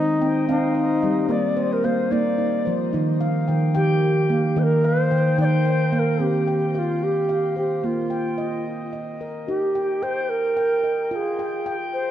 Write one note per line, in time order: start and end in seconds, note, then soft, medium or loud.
0.00 0.21 C4 medium
0.00 0.45 D#4 loud
0.00 0.76 D#5 medium
0.21 0.45 C4 medium
0.21 1.03 G5 medium
0.49 0.72 C4 loud
0.49 1.32 D#4 loud
0.49 0.74 F5 medium
0.75 1.57 F5 medium
1.02 1.15 G3 medium
1.02 1.57 D#5 medium
1.29 1.84 A#3 medium
1.29 1.74 D5 medium
1.57 2.39 C5 medium
1.72 1.86 A#4 medium
1.84 2.08 A#3 medium
1.84 2.13 C5 medium
1.84 2.66 F5 medium
2.11 2.35 A#3 loud
2.11 2.37 D#4 medium
2.11 2.73 D5 medium
2.38 2.92 D#4 medium
2.65 2.78 F3 medium
2.65 3.20 C5 medium
2.93 3.40 D#3 medium
2.93 3.48 D#4 medium
3.21 4.02 F5 medium
3.48 3.72 D#3 medium
3.48 3.73 G5 medium
3.75 3.99 D#3 medium
3.75 4.60 G4 medium
3.75 4.29 G5 medium
4.29 4.41 A#3 medium
4.29 4.83 F5 medium
4.56 5.03 D#3 loud
4.56 5.11 D#4 medium
4.56 4.64 C5 medium
4.63 4.87 A#4 loud
4.84 5.39 C5 loud
4.84 5.66 F5 medium
5.11 5.35 D#3 medium
5.11 5.37 G5 medium
5.38 5.62 D#3 loud
5.38 5.45 D5 loud
5.38 5.64 G5 medium
5.44 5.95 C5 loud
5.65 6.46 G5 medium
5.93 6.04 A#3 medium
5.93 6.00 C5 medium
5.93 6.47 F5 medium
5.99 6.23 A#4 medium
6.20 6.75 C4 medium
6.20 6.74 G4 medium
6.48 7.29 G5 medium
6.74 7.04 F4 medium
6.74 6.79 G4 medium
6.74 7.28 F5 medium
7.03 7.57 G4 medium
7.29 7.84 F5 medium
7.56 7.86 G4 medium
7.56 8.11 C5 medium
7.84 8.38 A#3 medium
7.84 8.66 F4 medium
8.10 8.93 G5 medium
8.38 8.92 D#5 medium
8.93 9.48 D#5 medium
9.21 9.75 A#4 medium
9.47 10.03 D#4 medium
9.47 10.04 G4 medium
9.75 10.01 G5 medium
10.02 10.31 C5 medium
10.02 10.55 G5 medium
10.29 11.04 A#4 loud
10.57 11.11 G5 medium
10.84 11.39 D#5 medium
11.04 11.11 A#4 medium
11.11 11.66 F4 medium
11.11 11.16 A#4 medium
11.15 11.73 G#4 medium
11.39 11.65 G5 medium
11.66 12.11 G5 medium
11.93 12.11 C5 medium